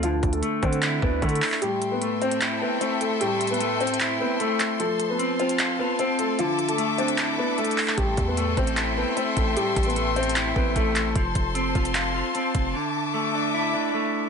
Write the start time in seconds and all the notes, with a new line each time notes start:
Already playing: D2
0.03 D3 F3 F4, closed hi-hat
0.23 D2, kick, closed hi-hat
0.33 A3 A4, closed hi-hat
0.42 A3, closed hi-hat
0.62 D3 C4 D4 C5, kick, closed hi-hat
0.73 closed hi-hat
0.82 E4, clap, closed hi-hat
1.02 D2 B3 D4 B4, kick
1.22 D3 A3 A4, kick, closed hi-hat
1.29 closed hi-hat
1.35 closed hi-hat
1.42 clap, open hi-hat
1.52 clap
1.62 A2 G3 G4 A4 E5 G5 C6, closed hi-hat
1.82 closed hi-hat
1.92 B3 B4
2.02 A3, closed hi-hat
2.22 C4 C5, closed hi-hat
2.31 closed hi-hat
2.41 E4, clap, closed hi-hat
2.61 B3 C4 B4
2.81 A3 C4 C5, closed hi-hat
3.01 A3 A4, closed hi-hat
3.21 A2 G3 G4, closed hi-hat
3.41 closed hi-hat
3.47 B4, closed hi-hat
3.51 B3, closed hi-hat
3.60 A3, closed hi-hat
3.80 C4 C5, closed hi-hat
3.87 closed hi-hat
3.94 closed hi-hat
4.00 E4, clap, closed hi-hat
4.20 B3 C4 B4
4.40 A3 A4, closed hi-hat
4.60 clap, closed hi-hat
4.80 F3 A3 A4 C5 A5, closed hi-hat
5.00 closed hi-hat
5.10 B3 B4
5.19 C4, closed hi-hat
5.39 C4 F4 C5, closed hi-hat
5.49 closed hi-hat
5.59 F5, clap, closed hi-hat
5.79 B3 F4 B4
5.99 C4 C5, closed hi-hat
6.19 A3 A4, closed hi-hat
6.39 D3 F3 F4 E5 D6, closed hi-hat
6.59 closed hi-hat
6.69 A3 A4, closed hi-hat
6.78 A3, closed hi-hat
6.98 C4 D4 C5, closed hi-hat
7.08 closed hi-hat
7.18 E4, clap, closed hi-hat
7.38 B3 D4 B4
7.58 A3 A4, closed hi-hat
7.65 closed hi-hat
7.71 closed hi-hat
7.78 clap, open hi-hat
7.88 clap
7.98 A1 A2 G3 G4 E5 G5 C6, kick, closed hi-hat
8.17 E2, kick, closed hi-hat
8.27 B3 B4
8.37 A3, closed hi-hat
8.57 A1 C4 C5, kick, closed hi-hat
8.67 closed hi-hat
8.77 E4, clap, closed hi-hat
8.97 B3 C4 B4
9.17 A3 C4 C5, closed hi-hat
9.37 A1 A3 A4, kick, closed hi-hat
9.56 A2 G3 G4, closed hi-hat
9.76 A1, kick, closed hi-hat
9.83 B4, closed hi-hat
9.87 B3, closed hi-hat
9.96 A3, closed hi-hat
10.16 C4 C5, closed hi-hat
10.23 closed hi-hat
10.29 closed hi-hat
10.36 E4, clap, closed hi-hat
10.56 A1 B3 C4 B4, kick
10.76 A1 A3 A4, kick, closed hi-hat
10.96 clap, closed hi-hat
11.16 F1 F3 C5 A5 C6, kick, closed hi-hat
11.35 F1, kick, closed hi-hat
11.55 C4, closed hi-hat
11.75 F1 F4, kick, closed hi-hat
11.85 closed hi-hat
11.95 F5, clap, closed hi-hat
12.15 F4
12.35 C4, closed hi-hat
12.55 F1, kick, closed hi-hat
12.75 D3 E5 D6
13.14 A3
13.35 D4
13.54 E4
13.74 D4
13.94 A3